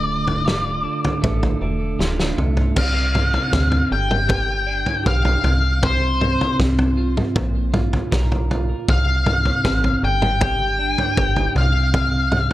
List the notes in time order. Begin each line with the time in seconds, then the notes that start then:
Already playing: D1 D2 F4 D5
0.27 floor tom
0.46 F4, snare, mid tom
0.83 D3
1.05 floor tom
1.22 A1 A3, kick, mid tom
1.43 floor tom
1.61 E1 D3
1.99 D1 F4, snare
2.20 snare
2.37 C2 A3, mid tom
2.57 floor tom
2.76 C2 C3 F5, kick, floor tom, crash
3.15 floor tom, mid tom
3.34 floor tom
3.52 D2 C4, kick, snare
3.72 floor tom
3.90 G1 G2 G5
4.11 mid tom
4.28 G4, kick, floor tom
4.66 D4
4.86 floor tom
5.03 B1 G4, kick
5.07 F5
5.25 floor tom
5.44 C2 C3, floor tom
5.82 C3 C5, kick, floor tom
6.21 mid tom
6.41 floor tom
6.59 C2 C4, kick, snare
6.79 floor tom
6.97 F4
7.17 mid tom
7.35 A#1 A#2, kick, floor tom
7.74 F4, floor tom, mid tom
7.93 floor tom
8.12 B1 A#4, kick, snare
8.32 floor tom
8.51 F4, floor tom
8.88 C2 C3 F5, kick, floor tom
9.26 floor tom, mid tom
9.45 floor tom
9.64 A1 C4, kick, snare
9.84 floor tom
10.02 G1 G2 G5
10.22 mid tom
10.40 G4 G5, kick, floor tom
10.79 D4
10.98 floor tom
11.17 G1 G4, kick
11.36 floor tom
11.55 C2 C3 F5, floor tom
11.93 C3, kick, floor tom
12.32 mid tom